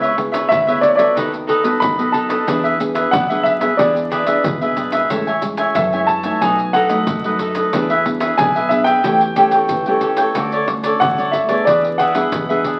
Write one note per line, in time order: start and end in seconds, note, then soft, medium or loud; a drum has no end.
0.00 0.41 C#2 medium
0.00 0.47 C#3 medium
0.00 0.12 B3 medium
0.00 0.12 E4 medium
0.00 0.13 G#4 medium
0.00 0.16 B4 medium
0.00 0.16 C#5 medium
0.00 0.17 E5 medium
0.00 pandeiro soft
0.00 maracas soft
0.17 0.48 B3 medium
0.17 0.48 E4 medium
0.17 0.49 G#4 medium
0.17 muted cavaquinho stroke soft
0.17 pandeiro medium
0.32 0.49 B4 medium
0.32 0.49 C#5 medium
0.32 0.48 E5 medium
0.32 pandeiro medium
0.32 maracas medium
0.49 1.06 D2 loud
0.49 1.13 G#2 medium
0.49 0.65 E4 soft
0.49 0.66 B4 soft
0.49 0.66 C#5 soft
0.49 0.80 E5 loud
0.49 0.66 E5 medium
0.49 pandeiro medium
0.49 maracas medium
0.49 surdo medium
0.67 0.95 B3 medium
0.67 0.95 E4 medium
0.67 0.95 G#4 medium
0.67 0.98 B4 medium
0.67 0.97 C#5 medium
0.67 0.96 E5 medium
0.67 pandeiro soft
0.67 maracas soft
0.81 0.89 D5 medium
0.81 pandeiro medium
0.81 maracas medium
0.88 0.97 C#5 medium
0.95 1.59 B3 medium
0.95 1.60 F#4 medium
0.95 1.60 A4 medium
0.95 1.14 C#5 medium
0.95 1.14 D5 medium
0.95 1.14 E5 medium
0.95 pandeiro medium
0.95 maracas medium
1.00 1.15 B4 medium
1.15 1.83 D#2 loud
1.15 1.78 D#3 medium
1.15 1.31 D#4 medium
1.15 1.31 A4 medium
1.15 1.32 B4 medium
1.15 1.32 D#5 medium
1.15 pandeiro medium
1.15 maracas medium
1.15 surdo soft
1.32 muted cavaquinho stroke soft
1.32 pandeiro soft
1.32 maracas soft
1.47 1.63 D#4 medium
1.47 1.64 A4 medium
1.47 1.63 B4 medium
1.47 1.62 D#5 medium
1.47 pandeiro medium
1.63 1.92 B3 medium
1.63 1.92 F#4 medium
1.63 1.93 A4 medium
1.63 1.97 A4 medium
1.63 1.97 B4 medium
1.63 1.96 D#5 medium
1.63 pandeiro medium
1.63 maracas medium
1.80 2.38 B1 medium
1.80 2.44 D#3 medium
1.80 2.15 B5 medium
1.80 pandeiro medium
1.80 maracas medium
1.80 surdo medium
1.98 2.45 B3 medium
1.98 2.45 F#4 medium
1.98 2.45 A4 medium
1.98 2.13 A4 medium
1.98 2.14 B4 medium
1.98 2.13 D#5 medium
1.98 pandeiro soft
1.98 maracas soft
2.12 2.29 D#4 medium
2.12 2.30 A4 soft
2.12 2.29 B4 soft
2.12 2.28 D#5 soft
2.12 2.44 A5 medium
2.12 pandeiro medium
2.29 2.46 A4 medium
2.29 2.46 B4 medium
2.29 2.45 D#5 medium
2.29 pandeiro medium
2.29 maracas medium
2.47 3.04 E2 medium
2.47 3.10 E3 medium
2.47 2.75 B3 medium
2.47 2.62 D4 medium
2.47 2.75 D4 medium
2.47 2.63 G#4 medium
2.47 2.76 G#4 medium
2.47 2.63 B4 medium
2.47 2.62 E5 medium
2.47 pandeiro medium
2.47 maracas medium
2.47 surdo medium
2.64 2.78 G#4 medium
2.64 2.79 B4 medium
2.64 2.79 E5 medium
2.64 pandeiro soft
2.64 maracas soft
2.79 3.11 B3 soft
2.79 3.11 D4 soft
2.79 3.11 G#4 medium
2.79 muted cavaquinho stroke soft
2.79 pandeiro medium
2.79 maracas medium
2.94 3.12 G#4 medium
2.94 3.12 B4 medium
2.94 3.11 E5 medium
2.94 pandeiro medium
2.94 maracas medium
3.11 3.69 B1 medium
3.11 3.28 D4 soft
3.11 3.28 G#4 soft
3.11 3.29 B4 soft
3.11 3.28 E5 medium
3.11 3.43 F#5 loud
3.11 pandeiro medium
3.11 maracas medium
3.11 surdo loud
3.29 3.58 B3 medium
3.29 3.58 D4 medium
3.29 3.61 G#4 medium
3.29 3.58 G#4 medium
3.29 3.60 B4 medium
3.29 3.59 E5 medium
3.29 pandeiro soft
3.29 maracas soft
3.43 3.51 E5 medium
3.43 pandeiro medium
3.60 3.73 B3 medium
3.60 3.73 D4 medium
3.60 3.78 G#4 medium
3.60 3.74 G#4 medium
3.60 3.77 B4 medium
3.60 3.77 E5 medium
3.60 pandeiro medium
3.60 maracas medium
3.77 4.35 E2 loud
3.77 4.41 E3 medium
3.77 4.23 B3 soft
3.77 3.94 D4 medium
3.77 4.23 D4 soft
3.77 3.94 G#4 medium
3.77 4.23 G#4 medium
3.77 3.95 B4 medium
3.77 4.40 D5 medium
3.77 3.95 E5 medium
3.77 pandeiro medium
3.77 maracas medium
3.77 surdo medium
3.96 muted cavaquinho stroke soft
3.96 pandeiro soft
3.96 maracas soft
4.10 4.26 D4 medium
4.10 4.27 G#4 medium
4.10 4.26 B4 medium
4.10 4.25 E5 medium
4.10 pandeiro medium
4.10 maracas medium
4.26 4.55 B3 medium
4.26 4.55 D4 medium
4.26 4.55 G#4 medium
4.26 4.60 G#4 medium
4.26 4.60 B4 medium
4.26 4.59 E5 medium
4.26 pandeiro medium
4.26 maracas medium
4.44 4.59 E2 medium
4.44 5.07 B2 medium
4.44 pandeiro medium
4.44 maracas medium
4.44 surdo loud
4.61 4.76 E1 medium
4.61 5.08 B3 medium
4.61 5.08 D4 medium
4.61 5.08 G#4 medium
4.61 4.76 G#4 soft
4.61 4.77 B4 medium
4.61 4.76 E5 medium
4.61 pandeiro soft
4.61 maracas soft
4.76 4.92 F#1 medium
4.76 4.92 D4 soft
4.76 4.93 G#4 soft
4.76 4.93 B4 medium
4.76 4.91 E5 medium
4.76 pandeiro medium
4.76 maracas medium
4.92 5.08 G#1 medium
4.92 5.10 G#4 soft
4.92 5.09 B4 medium
4.92 5.08 E5 medium
4.92 pandeiro medium
4.92 maracas medium
5.10 5.66 A1 medium
5.10 5.73 A2 medium
5.10 5.30 G#3 soft
5.10 5.30 C#4 soft
5.10 5.30 E4 medium
5.10 5.25 A4 soft
5.10 5.26 C#5 soft
5.10 5.26 E5 medium
5.10 5.26 G#5 medium
5.10 pandeiro medium
5.10 maracas medium
5.10 surdo medium
5.27 5.42 C#5 medium
5.27 5.42 E5 medium
5.27 5.42 G#5 medium
5.27 pandeiro soft
5.27 maracas soft
5.42 5.74 G#3 soft
5.42 5.74 C#4 medium
5.42 5.74 E4 medium
5.42 muted cavaquinho stroke soft
5.42 pandeiro medium
5.42 maracas medium
5.57 5.75 C#5 medium
5.57 5.75 E5 medium
5.57 5.74 G#5 medium
5.57 pandeiro medium
5.57 maracas medium
5.75 6.32 F#2 loud
5.75 6.39 E3 medium
5.75 5.91 A4 soft
5.75 5.92 C#5 soft
5.75 6.06 E5 medium
5.75 5.92 E5 soft
5.75 5.92 G#5 soft
5.75 pandeiro medium
5.75 maracas medium
5.75 surdo medium
5.93 6.21 G#3 medium
5.93 6.21 C#4 medium
5.93 6.21 E4 medium
5.93 6.25 C#5 medium
5.93 6.24 E5 medium
5.93 6.22 G#5 medium
5.93 pandeiro soft
5.93 maracas soft
6.07 6.38 A5 medium
6.07 pandeiro medium
6.23 6.85 F#3 medium
6.23 6.85 A3 medium
6.23 6.86 D#4 medium
6.23 6.41 C#5 medium
6.23 6.40 E5 medium
6.23 6.40 G#5 medium
6.23 pandeiro medium
6.23 maracas medium
6.41 7.09 B1 loud
6.41 7.04 B2 medium
6.41 6.57 D#4 medium
6.41 6.57 A4 medium
6.41 6.58 B4 medium
6.41 6.58 D#5 medium
6.41 6.76 G#5 medium
6.41 pandeiro medium
6.41 maracas medium
6.41 surdo medium
6.59 muted cavaquinho stroke soft
6.59 pandeiro soft
6.59 maracas soft
6.73 6.89 D#4 medium
6.73 6.90 A4 medium
6.73 6.89 B4 medium
6.73 6.88 D#5 medium
6.73 7.36 F#5 medium
6.73 pandeiro medium
6.89 7.18 F#3 medium
6.89 7.18 A3 medium
6.89 7.18 D#4 medium
6.89 7.23 A4 soft
6.89 7.22 B4 medium
6.89 7.22 D#5 medium
6.89 pandeiro medium
6.89 maracas medium
7.07 7.70 F#2 medium
7.07 7.63 F#2 medium
7.07 pandeiro medium
7.07 maracas medium
7.07 surdo loud
7.24 7.71 F#3 medium
7.24 7.71 A3 medium
7.24 7.71 D#4 medium
7.24 7.39 A4 medium
7.24 7.39 B4 medium
7.24 7.39 D#5 medium
7.24 pandeiro soft
7.24 maracas soft
7.39 7.55 D#4 soft
7.39 7.55 A4 soft
7.39 7.55 B4 soft
7.39 7.54 D#5 soft
7.39 pandeiro medium
7.39 maracas medium
7.55 7.72 A4 medium
7.55 7.72 B4 medium
7.55 7.71 D#5 medium
7.55 pandeiro medium
7.55 maracas medium
7.73 8.29 E2 medium
7.73 8.36 E3 medium
7.73 7.93 B3 medium
7.73 7.88 D4 medium
7.73 7.93 D4 medium
7.73 7.89 G#4 soft
7.73 7.93 G#4 medium
7.73 7.89 B4 medium
7.73 7.89 E5 medium
7.73 pandeiro medium
7.73 maracas medium
7.73 surdo medium
7.90 8.04 G#4 medium
7.90 8.05 B4 medium
7.90 8.05 E5 medium
7.90 pandeiro soft
7.90 maracas soft
8.05 8.33 B3 medium
8.05 8.34 D4 medium
8.05 8.34 G#4 medium
8.05 muted cavaquinho stroke soft
8.05 pandeiro medium
8.20 8.38 G#4 medium
8.20 8.37 B4 medium
8.20 8.37 E5 medium
8.20 pandeiro medium
8.20 maracas medium
8.38 8.95 B1 medium
8.38 9.02 B2 medium
8.38 8.58 B3 medium
8.38 8.54 D4 soft
8.38 8.59 D4 medium
8.38 8.54 G#4 medium
8.38 8.59 G#4 medium
8.38 8.54 B4 soft
8.38 8.54 E5 medium
8.38 8.72 G#5 loud
8.38 pandeiro medium
8.38 maracas medium
8.38 surdo loud
8.55 8.87 G#4 medium
8.55 8.86 B4 medium
8.55 8.85 E5 medium
8.55 pandeiro soft
8.55 maracas soft
8.69 9.02 B3 medium
8.69 9.02 D4 soft
8.69 9.02 G#4 medium
8.69 8.86 E5 medium
8.69 pandeiro medium
8.69 maracas medium
8.84 9.03 G#4 medium
8.84 9.03 B4 medium
8.84 9.02 E5 medium
8.84 9.97 G5 loud
8.84 pandeiro medium
8.84 maracas medium
9.04 9.71 E2 loud
9.04 9.67 E3 medium
9.04 9.32 A3 medium
9.04 9.32 C#4 soft
9.04 9.19 G4 medium
9.04 9.33 G4 medium
9.04 9.20 A4 medium
9.04 9.20 C#5 medium
9.04 9.20 G5 medium
9.04 pandeiro medium
9.04 maracas medium
9.04 surdo medium
9.21 muted cavaquinho stroke soft
9.21 pandeiro soft
9.21 maracas soft
9.36 9.81 A3 medium
9.36 9.81 C#4 medium
9.36 9.52 G4 medium
9.36 9.82 G4 medium
9.36 9.52 A4 medium
9.36 9.51 C#5 medium
9.36 9.50 G5 medium
9.36 pandeiro medium
9.36 maracas medium
9.51 9.85 A4 medium
9.51 9.85 C#5 medium
9.51 9.84 G5 medium
9.51 pandeiro medium
9.51 maracas medium
9.69 10.26 A1 medium
9.69 10.33 E3 medium
9.69 pandeiro medium
9.69 maracas medium
9.69 surdo medium
9.86 10.31 A3 medium
9.86 10.31 C#4 medium
9.86 10.32 G4 medium
9.86 10.01 A4 medium
9.86 10.02 C#5 medium
9.86 10.02 G5 medium
9.86 pandeiro soft
9.86 maracas soft
10.01 10.18 G4 soft
10.01 10.18 A4 soft
10.01 10.18 C#5 soft
10.01 10.17 G5 soft
10.01 pandeiro soft
10.01 maracas medium
10.17 10.35 A4 medium
10.17 10.34 C#5 medium
10.17 10.34 G5 medium
10.17 pandeiro medium
10.17 maracas medium
10.35 10.92 D2 medium
10.35 10.98 D3 medium
10.35 10.64 A3 medium
10.35 10.64 C#4 medium
10.35 10.51 F#4 soft
10.35 10.64 F#4 medium
10.35 10.52 A4 medium
10.35 10.52 C#5 medium
10.35 10.51 D5 soft
10.35 pandeiro medium
10.35 maracas medium
10.35 surdo medium
10.52 10.67 A4 medium
10.52 10.68 C#5 medium
10.52 10.68 D5 medium
10.52 pandeiro soft
10.52 maracas soft
10.68 10.99 A3 soft
10.68 11.00 C#4 medium
10.68 11.00 F#4 medium
10.68 muted cavaquinho stroke soft
10.68 pandeiro medium
10.83 11.00 A4 medium
10.83 11.00 C#5 medium
10.83 11.00 D5 medium
10.83 pandeiro medium
10.83 maracas medium
11.00 11.57 D2 medium
11.00 11.64 A2 medium
11.00 11.17 F#4 soft
11.00 11.17 A4 soft
11.00 11.17 C#5 soft
11.00 11.17 D5 medium
11.00 11.35 F#5 loud
11.00 pandeiro medium
11.00 maracas medium
11.00 surdo loud
11.18 11.46 A3 medium
11.18 11.46 C#4 medium
11.18 11.46 F#4 medium
11.18 11.49 A4 medium
11.18 11.48 C#5 medium
11.18 11.47 D5 medium
11.18 pandeiro soft
11.18 maracas soft
11.31 11.64 E5 medium
11.31 pandeiro medium
11.31 maracas medium
11.31 surdo medium
11.48 12.10 B3 medium
11.48 12.11 D4 medium
11.48 12.11 G#4 medium
11.48 11.66 A4 medium
11.48 11.66 C#5 medium
11.48 11.65 D5 medium
11.48 pandeiro medium
11.48 maracas medium
11.65 12.23 E2 loud
11.65 12.29 E3 medium
11.65 11.82 D4 medium
11.65 11.83 G#4 medium
11.65 11.83 B4 medium
11.65 12.00 D5 medium
11.65 11.83 E5 medium
11.65 pandeiro medium
11.65 maracas medium
11.65 surdo medium
11.84 muted cavaquinho stroke soft
11.84 pandeiro soft
11.84 maracas soft
11.98 12.15 D4 medium
11.98 12.15 G#4 medium
11.98 12.14 B4 medium
11.98 12.13 E5 medium
11.98 12.61 F#5 medium
11.98 pandeiro medium
11.98 maracas medium
12.14 12.43 B3 medium
12.14 12.43 D4 medium
12.14 12.44 G#4 medium
12.14 12.48 G#4 medium
12.14 12.48 B4 medium
12.14 12.47 E5 medium
12.14 pandeiro medium
12.14 maracas medium
12.32 12.79 E2 medium
12.32 12.79 B2 medium
12.32 pandeiro medium
12.32 maracas medium
12.32 surdo medium
12.49 12.79 B3 medium
12.49 12.79 D4 medium
12.49 12.79 G#4 medium
12.49 12.64 G#4 medium
12.49 12.65 B4 medium
12.49 12.65 E5 medium
12.49 pandeiro soft
12.49 maracas soft
12.64 12.79 D4 soft
12.64 12.79 G#4 soft
12.64 12.79 B4 soft
12.64 12.79 E5 soft
12.64 pandeiro medium